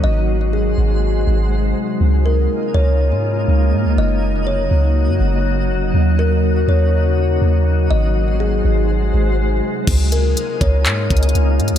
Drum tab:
CC |------------------------------------------------------------------------------------------------|------------------------------------------------------------------------------------------------|------------------------------------------------------------------------------------------------|------------------------------------------------------------------------------------------------|
HH |------------------------------------------------------------------------------------------------|------------------------------------------------------------------------------------------------|------------------------------------------------------------------------------------------------|------------------------------------------------------------------------------------------------|
CP |------------------------------------------------------------------------------------------------|------------------------------------------------------------------------------------------------|------------------------------------------------------------------------------------------------|------------------------------------------------------------------------------------------------|
BD |------------------------------------------------------------------------------------------------|------------------------------------------------------------------------------------------------|------------------------------------------------------------------------------------------------|------------------------------------------------------------------------------------------------|

CC |------------------------------------------------------------------------------------------------|x-----------------------------------------------------------------------------------------------|
HH |------------------------------------------------------------------------------------------------|x-----------x-----------x-----------x-----------x-----------x--x--x--x--x-----------x---x-------|
CP |------------------------------------------------------------------------------------------------|------------------------------------------------x-----------------------------------------------|
BD |------------------------------------------------------------------------------------------------|o-----------------------------------o-----------------------o-----------------------------------|